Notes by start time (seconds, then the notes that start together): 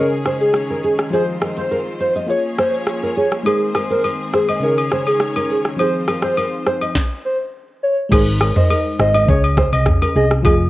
Already playing: C#3 D#3 G#3 C#4 G#4 C#5
0.00 D#5
0.25 C5, cross-stick, shaker
0.40 G#4, shaker
0.54 cross-stick, shaker
0.70 A#4
0.83 G#4, shaker
0.99 cross-stick, shaker
1.10 F3 G#3 C4 F4 G#4 C5, shaker
1.15 D#5
1.42 A#4, cross-stick, shaker
1.56 C5, shaker
1.71 A#4, shaker
2.00 C5, shaker
2.15 D#5, shaker
2.27 F3 A#3 C#4 F4 G#4 C#5, shaker
2.32 C#5
2.58 C5, cross-stick, shaker
2.74 shaker
2.87 cross-stick, shaker
3.03 A#4
3.16 G#4 C#5, shaker
3.32 cross-stick, shaker
3.43 D#3 G#3 C4 D#4 G#4 A#4 C5, high agogo, shaker
3.48 C5
3.75 A#4, cross-stick, high agogo, shaker
3.90 A#4 C5, shaker
4.04 A#4, high agogo, shaker
4.33 G#4 C5, cross-stick, shaker
4.49 D#5, high agogo, shaker
4.60 C#3 G#3 C#4 D#4 A#4 C#5, shaker
4.65 G#4
4.78 high agogo
4.91 C5, cross-stick, shaker
5.07 G#4, high agogo, shaker
5.20 cross-stick, shaker
5.36 A#4, high agogo
5.49 G#4, shaker
5.65 cross-stick, shaker
5.76 F3 C4 D#4 F4 G#4 C5, high agogo, shaker
5.81 G4
5.88 G#4
6.08 A#4, cross-stick, high agogo, shaker
6.22 C5, cross-stick, shaker
6.37 A#4, high agogo, shaker
6.66 C5, cross-stick, shaker
6.81 D#5, high agogo, shaker
6.95 kick, snare
7.25 C5
7.83 C#5
8.09 G#1 G#3 D#4 G#4 A#4, kick, crash, high agogo, shaker
8.14 C5
8.41 A#4, cross-stick, high agogo, shaker
8.56 C5 D#5, mid tom, shaker
8.70 A#4, high agogo, shaker
8.99 G#1 C5 D#5, cross-stick, shaker
9.14 D#5, high agogo, shaker
9.26 C#2 C#3 C#4 G#4 C#5, kick, shaker
9.31 D#5
9.44 high agogo
9.57 C5, kick, cross-stick, shaker
9.72 C2 D#5, high agogo, shaker
9.86 kick, cross-stick, mid tom, shaker
10.02 A#4, high agogo
10.15 C2 G#4 D#5, shaker
10.31 cross-stick, shaker
10.42 F1 F3 F4 G#4, kick, high agogo, shaker
10.47 D#5